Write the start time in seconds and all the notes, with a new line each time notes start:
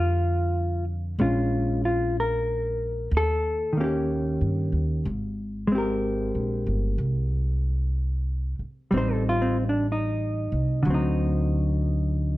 Already playing: F2 D3 A3 C4 F4
1.19 A#1 G#3 C#4 F4
1.85 F4
2.20 A#4
3.11 D#2
3.17 A4
3.73 D#3
3.77 A#3 C#4 G4
3.84 G4
4.41 G2
4.72 D#2
5.05 G#1
5.67 G#3
5.72 C4 G4
5.78 A#4
6.35 A#1
6.67 G1
6.98 C2
8.59 muted upright bass stroke
8.91 A1 G3 C4
8.96 D#4 C5
9.12 A4
9.29 F4
9.42 C4
9.69 D4
9.92 D#4
10.52 C2
10.83 D2 D3 F#3
10.90 C4 D#4